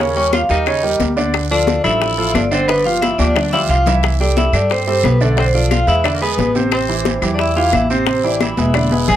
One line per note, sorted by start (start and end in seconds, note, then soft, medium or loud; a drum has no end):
0.00 0.44 D#2 loud
0.00 0.13 C#3 medium
0.00 0.14 A#3 medium
0.00 0.13 C#4 medium
0.00 0.17 A#4 medium
0.00 0.14 C#5 medium
0.00 high bongo medium
0.16 0.43 G3 medium
0.16 0.32 C#4 medium
0.16 0.44 G4 medium
0.16 0.44 A#4 medium
0.16 0.32 C#5 medium
0.16 high bongo soft
0.16 high conga soft
0.33 0.41 F4 medium
0.33 0.41 F5 loud
0.33 high bongo medium
0.33 high conga loud
0.33 short guiro medium
0.33 claves medium
0.49 0.97 D#2 medium
0.49 0.63 G3 medium
0.49 0.97 D#4 medium
0.49 0.64 G4 medium
0.49 0.64 A#4 medium
0.49 0.97 D#5 medium
0.49 high bongo soft
0.49 high conga soft
0.49 short guiro medium
0.66 0.80 C#3 medium
0.66 0.81 C#4 medium
0.66 0.81 C#5 medium
0.66 high bongo medium
0.66 high conga soft
0.66 long guiro medium
0.66 claves medium
0.83 1.11 G3 medium
0.83 1.11 G4 medium
0.83 1.11 A#4 medium
0.83 high bongo soft
0.83 high conga soft
1.00 1.78 D2 medium
1.00 high bongo soft
1.00 low bongo medium
1.00 high conga medium
1.00 short guiro medium
1.16 1.44 D3 medium
1.16 1.45 D4 medium
1.16 1.45 D5 medium
1.16 high conga medium
1.16 short guiro medium
1.34 high bongo medium
1.34 long guiro medium
1.34 claves medium
1.50 1.78 F3 medium
1.50 1.82 D4 medium
1.50 1.78 F4 medium
1.50 1.79 A4 medium
1.50 1.82 D5 medium
1.50 high bongo soft
1.50 high conga soft
1.67 high bongo medium
1.67 high conga loud
1.67 short guiro medium
1.84 2.31 A1 medium
1.84 2.12 F3 medium
1.84 2.12 D4 medium
1.84 2.31 E4 medium
1.84 2.12 A4 medium
1.84 2.36 E5 loud
1.84 high bongo soft
1.84 high conga soft
1.84 low conga medium
1.84 short guiro medium
1.84 claves medium
2.01 high bongo medium
2.01 high conga soft
2.01 long guiro medium
2.18 2.45 F3 medium
2.18 2.46 F4 medium
2.18 2.46 A4 medium
2.18 high bongo soft
2.18 high conga soft
2.34 3.13 G1 medium
2.34 2.42 D4 medium
2.34 2.42 D5 medium
2.34 high bongo soft
2.34 low bongo medium
2.34 high conga medium
2.34 short guiro medium
2.34 claves medium
2.51 2.65 D3 medium
2.51 2.67 C4 medium
2.51 2.65 D4 medium
2.51 2.67 C5 medium
2.51 2.66 D5 medium
2.51 short guiro medium
2.68 2.82 D3 medium
2.68 2.84 B3 medium
2.68 2.82 D4 medium
2.68 2.86 B4 loud
2.68 2.82 D5 medium
2.68 high bongo medium
2.68 high conga soft
2.68 long guiro medium
2.85 3.13 F3 medium
2.85 3.01 F4 medium
2.85 3.13 F4 medium
2.85 3.13 G4 medium
2.85 3.02 F5 loud
2.85 high bongo soft
2.85 high conga soft
3.01 3.18 E4 medium
3.01 3.19 E5 loud
3.01 high bongo medium
3.01 high conga medium
3.01 short guiro medium
3.01 claves medium
3.18 3.66 D2 medium
3.18 3.33 F3 medium
3.18 3.50 D4 medium
3.18 3.33 F4 medium
3.18 3.33 G4 medium
3.18 3.53 D5 medium
3.18 high bongo soft
3.18 high conga medium
3.18 short guiro medium
3.35 3.49 D3 medium
3.35 3.50 D4 medium
3.35 3.50 D5 medium
3.35 high bongo medium
3.35 low conga medium
3.35 long guiro medium
3.35 claves medium
3.52 3.80 F3 medium
3.52 3.60 E4 medium
3.52 3.80 F4 medium
3.52 3.81 G4 medium
3.52 3.60 E5 loud
3.52 high bongo medium
3.52 low conga medium
3.69 4.48 C2 medium
3.69 3.93 F4 medium
3.69 3.93 F5 loud
3.69 short guiro medium
3.86 4.14 E3 medium
3.86 4.14 E4 medium
3.86 4.14 E5 medium
3.86 low bongo medium
3.86 low conga loud
3.86 short guiro medium
4.03 high bongo medium
4.03 high conga soft
4.03 long guiro medium
4.03 claves medium
4.20 4.48 G3 medium
4.20 4.36 D4 medium
4.20 4.48 G4 medium
4.20 4.48 A4 medium
4.20 4.38 D5 medium
4.20 high bongo soft
4.20 high conga soft
4.36 4.53 E4 medium
4.36 4.54 E5 loud
4.36 high bongo medium
4.36 high conga loud
4.36 short guiro medium
4.53 5.00 G2 medium
4.53 4.81 G3 medium
4.53 4.69 D4 medium
4.53 4.81 G4 medium
4.53 4.81 A4 medium
4.53 4.71 D5 loud
4.53 high bongo soft
4.53 high conga soft
4.53 low conga medium
4.53 short guiro medium
4.53 claves medium
4.70 4.86 C4 medium
4.70 4.86 C5 medium
4.70 high bongo medium
4.70 high conga soft
4.70 long guiro medium
4.87 5.15 G3 medium
4.87 5.03 C4 medium
4.87 5.15 G4 medium
4.87 5.15 A4 medium
4.87 5.05 C5 medium
4.87 high bongo soft
4.87 high conga soft
5.03 5.82 B1 loud
5.03 5.20 B3 medium
5.03 5.20 B4 medium
5.03 high bongo soft
5.03 low bongo medium
5.03 high conga medium
5.03 short guiro medium
5.03 claves medium
5.21 5.35 D3 medium
5.21 5.37 A3 medium
5.21 5.35 D4 medium
5.21 5.37 A4 medium
5.21 5.35 D5 medium
5.21 short guiro medium
5.37 5.51 D3 medium
5.37 5.46 C4 medium
5.37 5.51 D4 medium
5.37 5.46 C5 loud
5.37 5.51 D5 medium
5.37 high bongo medium
5.37 high conga soft
5.37 long guiro medium
5.54 5.82 F3 medium
5.54 5.71 D4 medium
5.54 5.82 F4 medium
5.54 5.82 A4 medium
5.54 5.72 D5 medium
5.54 high bongo soft
5.54 high conga soft
5.71 5.87 F4 medium
5.71 5.87 F5 loud
5.71 high bongo medium
5.71 high conga loud
5.71 short guiro medium
5.71 claves medium
5.87 6.34 E2 medium
5.87 6.01 G#3 medium
5.87 6.13 E4 medium
5.87 6.01 G#4 medium
5.87 6.01 B4 medium
5.87 6.16 E5 loud
5.87 high bongo soft
5.87 high conga soft
5.87 short guiro medium
6.04 6.18 D3 medium
6.04 6.18 D4 medium
6.04 6.18 D5 medium
6.04 high bongo medium
6.04 high conga soft
6.04 long guiro medium
6.04 claves medium
6.14 6.21 A#3 soft
6.14 6.22 A#4 medium
6.21 6.49 G#3 medium
6.21 6.53 B3 medium
6.21 6.49 G#4 medium
6.21 6.53 B4 medium
6.21 6.50 B4 medium
6.21 high bongo soft
6.21 high conga soft
6.37 7.17 A1 loud
6.37 high bongo soft
6.37 low bongo medium
6.37 high conga medium
6.37 short guiro medium
6.55 6.83 C3 medium
6.55 6.83 C4 medium
6.55 6.83 C5 medium
6.55 high conga medium
6.55 short guiro medium
6.71 7.19 C4 medium
6.71 7.19 C5 loud
6.71 high bongo medium
6.71 high conga soft
6.71 long guiro medium
6.71 claves medium
6.89 7.17 E3 medium
6.89 7.17 E4 medium
6.89 7.17 G4 medium
6.89 high bongo soft
6.89 high conga soft
7.05 high bongo medium
7.05 high conga medium
7.05 short guiro medium
7.22 7.69 E2 loud
7.22 7.50 E3 medium
7.22 7.50 E4 medium
7.22 7.50 G4 medium
7.22 high bongo soft
7.22 high conga soft
7.22 low conga medium
7.22 short guiro medium
7.22 claves medium
7.34 7.39 D4 medium
7.34 7.39 D5 medium
7.39 7.55 E4 medium
7.39 7.57 E5 medium
7.39 high bongo medium
7.39 high conga soft
7.39 long guiro medium
7.56 7.84 E3 medium
7.56 7.84 E4 medium
7.56 7.72 F4 medium
7.56 7.84 G4 medium
7.56 7.74 F5 loud
7.56 high bongo soft
7.56 high conga soft
7.72 8.51 A1 medium
7.72 7.89 E4 medium
7.72 7.91 E5 medium
7.72 high bongo soft
7.72 low bongo medium
7.72 high conga medium
7.72 short guiro medium
7.72 claves medium
7.90 8.04 C3 medium
7.90 8.22 C4 medium
7.90 8.04 C4 medium
7.90 8.04 C5 medium
7.90 8.25 C5 medium
7.90 short guiro medium
8.07 8.21 C3 medium
8.07 8.21 C4 medium
8.07 8.21 C5 medium
8.07 high bongo medium
8.07 high conga soft
8.07 long guiro medium
8.24 8.51 E3 medium
8.24 8.40 D4 medium
8.24 8.52 E4 medium
8.24 8.52 G4 medium
8.24 8.41 D5 medium
8.24 high bongo soft
8.24 high conga soft
8.40 9.05 E4 medium
8.40 9.05 E5 medium
8.40 high bongo medium
8.40 high conga loud
8.40 short guiro medium
8.40 claves medium
8.57 9.04 E1 medium
8.57 8.71 G#3 medium
8.57 8.72 G#4 medium
8.57 8.72 B4 medium
8.57 high bongo soft
8.57 high conga loud
8.57 short guiro medium
8.74 8.88 D3 medium
8.74 8.89 D4 medium
8.74 8.89 D5 medium
8.74 high bongo medium
8.74 high conga loud
8.74 long guiro medium
8.74 claves medium
8.91 9.16 G#3 medium
8.91 9.16 G#4 medium
8.91 9.16 B4 medium
8.91 high bongo soft
8.91 high conga medium
9.08 9.16 A1 loud
9.08 9.16 G#4 medium
9.08 9.16 G#5 loud
9.08 high bongo soft
9.08 low bongo medium
9.08 low conga loud
9.08 short guiro medium